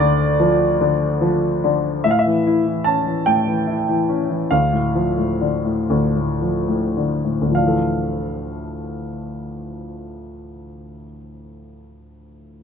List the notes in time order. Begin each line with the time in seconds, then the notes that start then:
Already playing: D2 D5
0.00 D3
0.40 F3
0.81 D3
1.21 F3
1.64 D3
2.04 A2 E5
2.11 F5
2.19 E5
2.26 E3
2.47 E4
2.66 E3
2.84 C#4 A5
3.06 E3
3.26 A2 G5
3.47 E3
3.67 E4
3.89 E3
4.09 C#4
4.30 E3
4.51 D2 F5
4.73 A2
4.95 F3
5.18 A2
5.41 D3
5.65 A2
5.90 D2
6.16 A2
6.42 F3
6.68 A2
6.97 D3
7.25 A2
7.41 D2
7.46 A2
7.51 F3 F5
7.57 D4
7.63 E3
7.68 A4